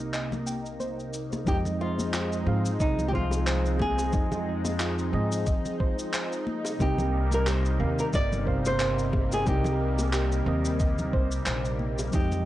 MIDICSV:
0, 0, Header, 1, 7, 480
1, 0, Start_track
1, 0, Key_signature, -4, "minor"
1, 0, Tempo, 666667
1, 1054, Time_signature, 4, 2, 24, 8
1, 8965, End_track
2, 0, Start_track
2, 0, Title_t, "Synth arpeggio sound"
2, 0, Program_c, 0, 84
2, 96, Note_on_c, 0, 75, 76
2, 240, Note_off_c, 0, 75, 0
2, 335, Note_on_c, 0, 79, 74
2, 554, Note_off_c, 0, 79, 0
2, 575, Note_on_c, 0, 72, 94
2, 719, Note_off_c, 0, 72, 0
2, 1056, Note_on_c, 0, 63, 82
2, 1274, Note_off_c, 0, 63, 0
2, 1534, Note_on_c, 0, 65, 106
2, 1753, Note_off_c, 0, 65, 0
2, 2015, Note_on_c, 0, 75, 78
2, 2160, Note_off_c, 0, 75, 0
2, 2256, Note_on_c, 0, 72, 96
2, 2400, Note_off_c, 0, 72, 0
2, 2494, Note_on_c, 0, 72, 93
2, 2639, Note_off_c, 0, 72, 0
2, 2977, Note_on_c, 0, 63, 78
2, 3195, Note_off_c, 0, 63, 0
2, 3455, Note_on_c, 0, 65, 107
2, 3674, Note_off_c, 0, 65, 0
2, 3936, Note_on_c, 0, 75, 81
2, 4080, Note_off_c, 0, 75, 0
2, 4175, Note_on_c, 0, 72, 98
2, 4319, Note_off_c, 0, 72, 0
2, 4417, Note_on_c, 0, 72, 101
2, 4561, Note_off_c, 0, 72, 0
2, 4899, Note_on_c, 0, 63, 81
2, 5116, Note_off_c, 0, 63, 0
2, 5377, Note_on_c, 0, 67, 102
2, 5595, Note_off_c, 0, 67, 0
2, 5855, Note_on_c, 0, 75, 81
2, 6000, Note_off_c, 0, 75, 0
2, 6096, Note_on_c, 0, 72, 98
2, 6240, Note_off_c, 0, 72, 0
2, 6334, Note_on_c, 0, 72, 99
2, 6479, Note_off_c, 0, 72, 0
2, 6815, Note_on_c, 0, 63, 85
2, 7034, Note_off_c, 0, 63, 0
2, 7296, Note_on_c, 0, 67, 107
2, 7515, Note_off_c, 0, 67, 0
2, 7775, Note_on_c, 0, 75, 78
2, 7920, Note_off_c, 0, 75, 0
2, 8015, Note_on_c, 0, 72, 102
2, 8160, Note_off_c, 0, 72, 0
2, 8255, Note_on_c, 0, 72, 97
2, 8400, Note_off_c, 0, 72, 0
2, 8735, Note_on_c, 0, 63, 80
2, 8954, Note_off_c, 0, 63, 0
2, 8965, End_track
3, 0, Start_track
3, 0, Title_t, "Nylon-string guitar"
3, 0, Program_c, 1, 24
3, 0, Note_on_c, 1, 63, 79
3, 791, Note_off_c, 1, 63, 0
3, 1064, Note_on_c, 1, 67, 92
3, 1128, Note_off_c, 1, 67, 0
3, 1302, Note_on_c, 1, 65, 91
3, 2024, Note_on_c, 1, 63, 89
3, 2040, Note_off_c, 1, 65, 0
3, 2202, Note_off_c, 1, 63, 0
3, 2220, Note_on_c, 1, 67, 76
3, 2259, Note_off_c, 1, 67, 0
3, 2266, Note_on_c, 1, 65, 96
3, 2744, Note_off_c, 1, 65, 0
3, 2746, Note_on_c, 1, 68, 106
3, 3191, Note_off_c, 1, 68, 0
3, 4907, Note_on_c, 1, 67, 97
3, 5251, Note_off_c, 1, 67, 0
3, 5285, Note_on_c, 1, 70, 94
3, 5386, Note_off_c, 1, 70, 0
3, 5386, Note_on_c, 1, 72, 102
3, 5756, Note_off_c, 1, 72, 0
3, 5758, Note_on_c, 1, 70, 97
3, 5794, Note_off_c, 1, 70, 0
3, 5867, Note_on_c, 1, 74, 116
3, 6211, Note_off_c, 1, 74, 0
3, 6242, Note_on_c, 1, 72, 110
3, 6718, Note_off_c, 1, 72, 0
3, 6721, Note_on_c, 1, 68, 90
3, 6822, Note_off_c, 1, 68, 0
3, 6827, Note_on_c, 1, 67, 84
3, 7512, Note_off_c, 1, 67, 0
3, 8747, Note_on_c, 1, 67, 93
3, 8965, Note_off_c, 1, 67, 0
3, 8965, End_track
4, 0, Start_track
4, 0, Title_t, "Tine electric piano"
4, 0, Program_c, 2, 4
4, 0, Note_on_c, 2, 48, 65
4, 0, Note_on_c, 2, 60, 57
4, 0, Note_on_c, 2, 70, 58
4, 784, Note_off_c, 2, 48, 0
4, 788, Note_off_c, 2, 60, 0
4, 792, Note_off_c, 2, 70, 0
4, 1045, Note_on_c, 2, 53, 87
4, 1054, Note_on_c, 2, 60, 75
4, 1061, Note_on_c, 2, 56, 82
4, 1069, Note_on_c, 2, 75, 93
4, 1744, Note_off_c, 2, 53, 0
4, 1749, Note_off_c, 2, 60, 0
4, 1753, Note_off_c, 2, 56, 0
4, 1757, Note_off_c, 2, 75, 0
4, 1771, Note_on_c, 2, 53, 95
4, 1776, Note_on_c, 2, 60, 86
4, 1780, Note_on_c, 2, 68, 85
4, 1785, Note_on_c, 2, 77, 103
4, 1930, Note_off_c, 2, 53, 0
4, 1933, Note_off_c, 2, 60, 0
4, 1935, Note_off_c, 2, 68, 0
4, 1937, Note_off_c, 2, 77, 0
4, 2243, Note_on_c, 2, 53, 90
4, 2250, Note_on_c, 2, 60, 79
4, 2257, Note_on_c, 2, 68, 81
4, 2266, Note_on_c, 2, 77, 98
4, 2944, Note_off_c, 2, 53, 0
4, 2947, Note_off_c, 2, 60, 0
4, 2951, Note_off_c, 2, 68, 0
4, 2955, Note_off_c, 2, 77, 0
4, 2958, Note_on_c, 2, 53, 88
4, 2967, Note_on_c, 2, 60, 82
4, 2976, Note_on_c, 2, 68, 79
4, 2984, Note_on_c, 2, 75, 102
4, 3661, Note_off_c, 2, 53, 0
4, 3666, Note_off_c, 2, 60, 0
4, 3670, Note_off_c, 2, 68, 0
4, 3674, Note_off_c, 2, 75, 0
4, 3682, Note_on_c, 2, 53, 90
4, 3690, Note_on_c, 2, 60, 89
4, 3695, Note_on_c, 2, 68, 84
4, 3703, Note_on_c, 2, 75, 109
4, 4272, Note_off_c, 2, 53, 0
4, 4276, Note_off_c, 2, 60, 0
4, 4278, Note_off_c, 2, 68, 0
4, 4283, Note_off_c, 2, 75, 0
4, 4884, Note_on_c, 2, 48, 88
4, 4893, Note_on_c, 2, 60, 82
4, 4901, Note_on_c, 2, 70, 78
4, 4909, Note_on_c, 2, 75, 99
4, 5584, Note_off_c, 2, 48, 0
4, 5589, Note_off_c, 2, 60, 0
4, 5593, Note_off_c, 2, 70, 0
4, 5597, Note_off_c, 2, 75, 0
4, 5607, Note_on_c, 2, 48, 103
4, 5613, Note_on_c, 2, 60, 95
4, 5616, Note_on_c, 2, 70, 97
4, 5619, Note_on_c, 2, 77, 109
4, 5768, Note_off_c, 2, 48, 0
4, 5771, Note_off_c, 2, 60, 0
4, 5773, Note_off_c, 2, 70, 0
4, 5774, Note_off_c, 2, 77, 0
4, 6081, Note_on_c, 2, 48, 86
4, 6089, Note_on_c, 2, 60, 80
4, 6098, Note_on_c, 2, 70, 81
4, 6106, Note_on_c, 2, 77, 104
4, 6783, Note_off_c, 2, 48, 0
4, 6787, Note_off_c, 2, 60, 0
4, 6791, Note_off_c, 2, 70, 0
4, 6795, Note_off_c, 2, 77, 0
4, 6801, Note_on_c, 2, 48, 91
4, 6808, Note_on_c, 2, 60, 80
4, 6816, Note_on_c, 2, 70, 80
4, 6824, Note_on_c, 2, 75, 105
4, 7503, Note_off_c, 2, 48, 0
4, 7506, Note_off_c, 2, 60, 0
4, 7510, Note_off_c, 2, 70, 0
4, 7514, Note_off_c, 2, 75, 0
4, 7524, Note_on_c, 2, 48, 94
4, 7531, Note_on_c, 2, 60, 87
4, 7539, Note_on_c, 2, 70, 83
4, 7548, Note_on_c, 2, 75, 106
4, 8113, Note_off_c, 2, 48, 0
4, 8116, Note_off_c, 2, 60, 0
4, 8121, Note_off_c, 2, 70, 0
4, 8125, Note_off_c, 2, 75, 0
4, 8721, Note_on_c, 2, 53, 89
4, 8727, Note_on_c, 2, 60, 81
4, 8737, Note_on_c, 2, 56, 82
4, 8745, Note_on_c, 2, 75, 96
4, 8965, Note_off_c, 2, 53, 0
4, 8965, Note_off_c, 2, 56, 0
4, 8965, Note_off_c, 2, 60, 0
4, 8965, Note_off_c, 2, 75, 0
4, 8965, End_track
5, 0, Start_track
5, 0, Title_t, "Analog synth pad"
5, 0, Program_c, 3, 89
5, 0, Note_on_c, 3, 36, 81
5, 0, Note_on_c, 3, 48, 73
5, 0, Note_on_c, 3, 58, 73
5, 0, Note_on_c, 3, 63, 85
5, 1022, Note_off_c, 3, 48, 0
5, 1022, Note_off_c, 3, 63, 0
5, 1023, Note_off_c, 3, 36, 0
5, 1023, Note_off_c, 3, 58, 0
5, 1053, Note_on_c, 3, 53, 73
5, 1053, Note_on_c, 3, 63, 73
5, 1054, Note_on_c, 3, 60, 71
5, 1057, Note_on_c, 3, 56, 90
5, 4625, Note_off_c, 3, 53, 0
5, 4625, Note_off_c, 3, 60, 0
5, 4627, Note_off_c, 3, 56, 0
5, 4650, Note_on_c, 3, 48, 87
5, 4651, Note_on_c, 3, 58, 78
5, 4653, Note_on_c, 3, 55, 77
5, 8703, Note_off_c, 3, 48, 0
5, 8704, Note_off_c, 3, 58, 0
5, 8705, Note_off_c, 3, 55, 0
5, 8736, Note_on_c, 3, 53, 77
5, 8737, Note_on_c, 3, 60, 70
5, 8740, Note_on_c, 3, 56, 88
5, 8965, Note_off_c, 3, 53, 0
5, 8965, Note_off_c, 3, 56, 0
5, 8965, Note_off_c, 3, 60, 0
5, 8965, Note_off_c, 3, 63, 0
5, 8965, End_track
6, 0, Start_track
6, 0, Title_t, "Upright bass"
6, 0, Program_c, 4, 32
6, 1057, Note_on_c, 4, 41, 94
6, 1745, Note_off_c, 4, 41, 0
6, 1774, Note_on_c, 4, 44, 94
6, 1976, Note_off_c, 4, 44, 0
6, 2016, Note_on_c, 4, 36, 94
6, 2945, Note_off_c, 4, 36, 0
6, 2976, Note_on_c, 4, 41, 96
6, 3665, Note_off_c, 4, 41, 0
6, 3694, Note_on_c, 4, 44, 94
6, 3896, Note_off_c, 4, 44, 0
6, 4896, Note_on_c, 4, 36, 104
6, 5585, Note_off_c, 4, 36, 0
6, 5614, Note_on_c, 4, 39, 91
6, 5816, Note_off_c, 4, 39, 0
6, 5858, Note_on_c, 4, 31, 100
6, 6786, Note_off_c, 4, 31, 0
6, 6816, Note_on_c, 4, 36, 96
6, 7505, Note_off_c, 4, 36, 0
6, 7533, Note_on_c, 4, 39, 97
6, 8016, Note_off_c, 4, 39, 0
6, 8016, Note_on_c, 4, 36, 88
6, 8217, Note_off_c, 4, 36, 0
6, 8254, Note_on_c, 4, 34, 83
6, 8704, Note_off_c, 4, 34, 0
6, 8738, Note_on_c, 4, 41, 97
6, 8965, Note_off_c, 4, 41, 0
6, 8965, End_track
7, 0, Start_track
7, 0, Title_t, "Drums"
7, 99, Note_on_c, 9, 39, 72
7, 100, Note_on_c, 9, 82, 40
7, 171, Note_off_c, 9, 39, 0
7, 172, Note_off_c, 9, 82, 0
7, 229, Note_on_c, 9, 64, 68
7, 233, Note_on_c, 9, 63, 77
7, 237, Note_on_c, 9, 82, 19
7, 301, Note_off_c, 9, 64, 0
7, 305, Note_off_c, 9, 63, 0
7, 309, Note_off_c, 9, 82, 0
7, 339, Note_on_c, 9, 82, 70
7, 411, Note_off_c, 9, 82, 0
7, 474, Note_on_c, 9, 82, 28
7, 546, Note_off_c, 9, 82, 0
7, 575, Note_on_c, 9, 63, 53
7, 580, Note_on_c, 9, 82, 38
7, 647, Note_off_c, 9, 63, 0
7, 652, Note_off_c, 9, 82, 0
7, 718, Note_on_c, 9, 82, 20
7, 790, Note_off_c, 9, 82, 0
7, 818, Note_on_c, 9, 82, 65
7, 890, Note_off_c, 9, 82, 0
7, 954, Note_on_c, 9, 82, 29
7, 956, Note_on_c, 9, 60, 53
7, 957, Note_on_c, 9, 63, 75
7, 1026, Note_off_c, 9, 82, 0
7, 1028, Note_off_c, 9, 60, 0
7, 1029, Note_off_c, 9, 63, 0
7, 1057, Note_on_c, 9, 36, 112
7, 1059, Note_on_c, 9, 82, 51
7, 1129, Note_off_c, 9, 36, 0
7, 1131, Note_off_c, 9, 82, 0
7, 1190, Note_on_c, 9, 64, 90
7, 1194, Note_on_c, 9, 82, 33
7, 1262, Note_off_c, 9, 64, 0
7, 1266, Note_off_c, 9, 82, 0
7, 1430, Note_on_c, 9, 63, 68
7, 1435, Note_on_c, 9, 82, 66
7, 1502, Note_off_c, 9, 63, 0
7, 1507, Note_off_c, 9, 82, 0
7, 1537, Note_on_c, 9, 39, 99
7, 1537, Note_on_c, 9, 82, 53
7, 1609, Note_off_c, 9, 39, 0
7, 1609, Note_off_c, 9, 82, 0
7, 1675, Note_on_c, 9, 82, 34
7, 1747, Note_off_c, 9, 82, 0
7, 1912, Note_on_c, 9, 82, 65
7, 1984, Note_off_c, 9, 82, 0
7, 2016, Note_on_c, 9, 36, 120
7, 2017, Note_on_c, 9, 82, 55
7, 2088, Note_off_c, 9, 36, 0
7, 2089, Note_off_c, 9, 82, 0
7, 2150, Note_on_c, 9, 64, 76
7, 2154, Note_on_c, 9, 82, 33
7, 2222, Note_off_c, 9, 64, 0
7, 2226, Note_off_c, 9, 82, 0
7, 2256, Note_on_c, 9, 36, 56
7, 2328, Note_off_c, 9, 36, 0
7, 2384, Note_on_c, 9, 60, 63
7, 2395, Note_on_c, 9, 82, 66
7, 2456, Note_off_c, 9, 60, 0
7, 2467, Note_off_c, 9, 82, 0
7, 2498, Note_on_c, 9, 39, 103
7, 2498, Note_on_c, 9, 82, 55
7, 2570, Note_off_c, 9, 39, 0
7, 2570, Note_off_c, 9, 82, 0
7, 2633, Note_on_c, 9, 82, 34
7, 2705, Note_off_c, 9, 82, 0
7, 2731, Note_on_c, 9, 63, 55
7, 2732, Note_on_c, 9, 60, 62
7, 2736, Note_on_c, 9, 36, 102
7, 2803, Note_off_c, 9, 63, 0
7, 2804, Note_off_c, 9, 60, 0
7, 2808, Note_off_c, 9, 36, 0
7, 2869, Note_on_c, 9, 60, 65
7, 2871, Note_on_c, 9, 82, 65
7, 2941, Note_off_c, 9, 60, 0
7, 2943, Note_off_c, 9, 82, 0
7, 2972, Note_on_c, 9, 82, 51
7, 2975, Note_on_c, 9, 36, 125
7, 3044, Note_off_c, 9, 82, 0
7, 3047, Note_off_c, 9, 36, 0
7, 3108, Note_on_c, 9, 64, 92
7, 3109, Note_on_c, 9, 60, 51
7, 3111, Note_on_c, 9, 82, 31
7, 3180, Note_off_c, 9, 64, 0
7, 3181, Note_off_c, 9, 60, 0
7, 3183, Note_off_c, 9, 82, 0
7, 3346, Note_on_c, 9, 60, 60
7, 3349, Note_on_c, 9, 63, 64
7, 3350, Note_on_c, 9, 82, 70
7, 3418, Note_off_c, 9, 60, 0
7, 3421, Note_off_c, 9, 63, 0
7, 3422, Note_off_c, 9, 82, 0
7, 3454, Note_on_c, 9, 39, 109
7, 3454, Note_on_c, 9, 82, 59
7, 3526, Note_off_c, 9, 39, 0
7, 3526, Note_off_c, 9, 82, 0
7, 3591, Note_on_c, 9, 82, 34
7, 3663, Note_off_c, 9, 82, 0
7, 3830, Note_on_c, 9, 82, 66
7, 3902, Note_off_c, 9, 82, 0
7, 3935, Note_on_c, 9, 82, 55
7, 3936, Note_on_c, 9, 36, 126
7, 4007, Note_off_c, 9, 82, 0
7, 4008, Note_off_c, 9, 36, 0
7, 4071, Note_on_c, 9, 64, 74
7, 4071, Note_on_c, 9, 82, 35
7, 4143, Note_off_c, 9, 64, 0
7, 4143, Note_off_c, 9, 82, 0
7, 4176, Note_on_c, 9, 36, 105
7, 4248, Note_off_c, 9, 36, 0
7, 4312, Note_on_c, 9, 82, 73
7, 4384, Note_off_c, 9, 82, 0
7, 4416, Note_on_c, 9, 39, 109
7, 4416, Note_on_c, 9, 82, 58
7, 4488, Note_off_c, 9, 39, 0
7, 4488, Note_off_c, 9, 82, 0
7, 4553, Note_on_c, 9, 82, 34
7, 4625, Note_off_c, 9, 82, 0
7, 4656, Note_on_c, 9, 63, 65
7, 4728, Note_off_c, 9, 63, 0
7, 4785, Note_on_c, 9, 60, 69
7, 4794, Note_on_c, 9, 82, 67
7, 4857, Note_off_c, 9, 60, 0
7, 4866, Note_off_c, 9, 82, 0
7, 4897, Note_on_c, 9, 36, 126
7, 4899, Note_on_c, 9, 82, 53
7, 4969, Note_off_c, 9, 36, 0
7, 4971, Note_off_c, 9, 82, 0
7, 5028, Note_on_c, 9, 64, 97
7, 5035, Note_on_c, 9, 82, 32
7, 5100, Note_off_c, 9, 64, 0
7, 5107, Note_off_c, 9, 82, 0
7, 5265, Note_on_c, 9, 63, 68
7, 5271, Note_on_c, 9, 82, 72
7, 5337, Note_off_c, 9, 63, 0
7, 5343, Note_off_c, 9, 82, 0
7, 5375, Note_on_c, 9, 39, 108
7, 5376, Note_on_c, 9, 82, 56
7, 5447, Note_off_c, 9, 39, 0
7, 5448, Note_off_c, 9, 82, 0
7, 5512, Note_on_c, 9, 82, 35
7, 5584, Note_off_c, 9, 82, 0
7, 5753, Note_on_c, 9, 82, 71
7, 5825, Note_off_c, 9, 82, 0
7, 5856, Note_on_c, 9, 82, 56
7, 5857, Note_on_c, 9, 36, 127
7, 5928, Note_off_c, 9, 82, 0
7, 5929, Note_off_c, 9, 36, 0
7, 5994, Note_on_c, 9, 82, 35
7, 5995, Note_on_c, 9, 64, 81
7, 6066, Note_off_c, 9, 82, 0
7, 6067, Note_off_c, 9, 64, 0
7, 6097, Note_on_c, 9, 36, 66
7, 6169, Note_off_c, 9, 36, 0
7, 6231, Note_on_c, 9, 82, 71
7, 6236, Note_on_c, 9, 60, 64
7, 6303, Note_off_c, 9, 82, 0
7, 6308, Note_off_c, 9, 60, 0
7, 6333, Note_on_c, 9, 39, 102
7, 6334, Note_on_c, 9, 82, 57
7, 6405, Note_off_c, 9, 39, 0
7, 6406, Note_off_c, 9, 82, 0
7, 6471, Note_on_c, 9, 82, 36
7, 6543, Note_off_c, 9, 82, 0
7, 6573, Note_on_c, 9, 60, 61
7, 6576, Note_on_c, 9, 36, 113
7, 6576, Note_on_c, 9, 63, 65
7, 6645, Note_off_c, 9, 60, 0
7, 6648, Note_off_c, 9, 36, 0
7, 6648, Note_off_c, 9, 63, 0
7, 6711, Note_on_c, 9, 82, 65
7, 6715, Note_on_c, 9, 60, 60
7, 6783, Note_off_c, 9, 82, 0
7, 6787, Note_off_c, 9, 60, 0
7, 6816, Note_on_c, 9, 36, 127
7, 6816, Note_on_c, 9, 82, 50
7, 6888, Note_off_c, 9, 36, 0
7, 6888, Note_off_c, 9, 82, 0
7, 6944, Note_on_c, 9, 64, 92
7, 6949, Note_on_c, 9, 60, 46
7, 6953, Note_on_c, 9, 82, 32
7, 7016, Note_off_c, 9, 64, 0
7, 7021, Note_off_c, 9, 60, 0
7, 7025, Note_off_c, 9, 82, 0
7, 7189, Note_on_c, 9, 60, 58
7, 7191, Note_on_c, 9, 82, 66
7, 7195, Note_on_c, 9, 63, 68
7, 7261, Note_off_c, 9, 60, 0
7, 7263, Note_off_c, 9, 82, 0
7, 7267, Note_off_c, 9, 63, 0
7, 7294, Note_on_c, 9, 39, 103
7, 7294, Note_on_c, 9, 82, 56
7, 7366, Note_off_c, 9, 39, 0
7, 7366, Note_off_c, 9, 82, 0
7, 7431, Note_on_c, 9, 82, 37
7, 7503, Note_off_c, 9, 82, 0
7, 7669, Note_on_c, 9, 82, 70
7, 7741, Note_off_c, 9, 82, 0
7, 7774, Note_on_c, 9, 82, 56
7, 7776, Note_on_c, 9, 36, 126
7, 7846, Note_off_c, 9, 82, 0
7, 7848, Note_off_c, 9, 36, 0
7, 7910, Note_on_c, 9, 82, 36
7, 7911, Note_on_c, 9, 64, 77
7, 7982, Note_off_c, 9, 82, 0
7, 7983, Note_off_c, 9, 64, 0
7, 8016, Note_on_c, 9, 36, 105
7, 8088, Note_off_c, 9, 36, 0
7, 8148, Note_on_c, 9, 82, 68
7, 8220, Note_off_c, 9, 82, 0
7, 8252, Note_on_c, 9, 39, 98
7, 8253, Note_on_c, 9, 82, 55
7, 8324, Note_off_c, 9, 39, 0
7, 8325, Note_off_c, 9, 82, 0
7, 8389, Note_on_c, 9, 82, 33
7, 8461, Note_off_c, 9, 82, 0
7, 8491, Note_on_c, 9, 63, 56
7, 8563, Note_off_c, 9, 63, 0
7, 8630, Note_on_c, 9, 82, 66
7, 8633, Note_on_c, 9, 60, 61
7, 8702, Note_off_c, 9, 82, 0
7, 8705, Note_off_c, 9, 60, 0
7, 8733, Note_on_c, 9, 82, 51
7, 8737, Note_on_c, 9, 36, 126
7, 8805, Note_off_c, 9, 82, 0
7, 8809, Note_off_c, 9, 36, 0
7, 8869, Note_on_c, 9, 82, 31
7, 8871, Note_on_c, 9, 64, 84
7, 8941, Note_off_c, 9, 82, 0
7, 8943, Note_off_c, 9, 64, 0
7, 8965, End_track
0, 0, End_of_file